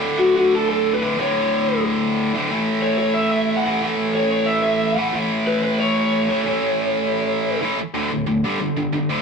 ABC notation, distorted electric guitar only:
X:1
M:4/4
L:1/8
Q:1/4=182
K:D
V:1 name="Distorted electric guitar" clef=bass
[D,,A,,D,]6 [D,,A,,D,] [D,,A,,D,]- | [D,,A,,D,]6 [D,,A,,D,] [A,,E,A,]- | [A,,E,A,]6 [A,,E,A,] [A,,E,A,]- | [A,,E,A,]6 [A,,E,A,] [A,,E,A,]- |
[A,,E,A,]6 [A,,E,A,] [A,,E,A,]- | [A,,E,A,]6 [A,,E,A,] z | [D,,A,,D,] [D,,A,,] [D,,A,,] [G,,D,G,] [G,,D,] [G,,D,] [G,,D,] [D,,A,,D,] |]